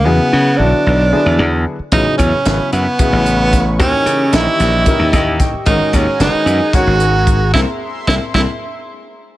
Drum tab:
HH |-------|xxxxxxx|xxxxxxx|xxxxxxx|
SD |-------|--o---o|--oo-oo|-oo-o--|
BD |-------|oo--o-o|o---ooo|oo--o-o|

HH |-------|
SD |o-oo---|
BD |o-oo---|